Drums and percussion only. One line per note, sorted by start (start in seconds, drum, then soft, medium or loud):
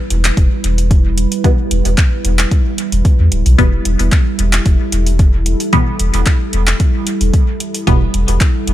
0.10 closed hi-hat medium
0.25 clap medium
0.25 closed hi-hat medium
0.37 kick loud
0.37 closed hi-hat soft
0.64 closed hi-hat medium
0.78 closed hi-hat medium
0.91 kick loud
0.91 closed hi-hat soft
1.18 closed hi-hat medium
1.32 closed hi-hat soft
1.44 kick loud
1.44 closed hi-hat soft
1.71 closed hi-hat medium
1.85 closed hi-hat soft
1.98 kick loud
1.98 clap medium
1.98 closed hi-hat soft
2.25 closed hi-hat medium
2.39 clap medium
2.39 closed hi-hat soft
2.51 kick loud
2.51 closed hi-hat soft
2.78 closed hi-hat medium
2.92 closed hi-hat soft
3.05 kick loud
3.05 closed hi-hat soft
3.32 closed hi-hat medium
3.46 closed hi-hat soft
3.58 kick loud
3.58 closed hi-hat soft
3.85 closed hi-hat medium
3.99 closed hi-hat soft
4.12 kick loud
4.12 clap medium
4.12 closed hi-hat soft
4.39 closed hi-hat medium
4.53 clap medium
4.53 closed hi-hat soft
4.66 kick loud
4.66 closed hi-hat soft
4.92 closed hi-hat medium
5.06 closed hi-hat soft
5.19 kick loud
5.19 closed hi-hat soft
5.46 closed hi-hat medium
5.60 closed hi-hat soft
5.73 kick loud
5.73 closed hi-hat soft
5.99 closed hi-hat medium
6.14 closed hi-hat soft
6.26 kick loud
6.26 clap medium
6.26 closed hi-hat soft
6.53 closed hi-hat medium
6.67 clap medium
6.67 closed hi-hat soft
6.80 kick loud
6.80 closed hi-hat soft
7.07 closed hi-hat medium
7.21 closed hi-hat soft
7.34 kick loud
7.34 closed hi-hat soft
7.60 closed hi-hat medium
7.75 closed hi-hat soft
7.87 kick loud
7.87 closed hi-hat soft
8.14 closed hi-hat medium
8.28 closed hi-hat soft
8.41 kick loud
8.41 clap medium
8.41 closed hi-hat soft
8.68 closed hi-hat medium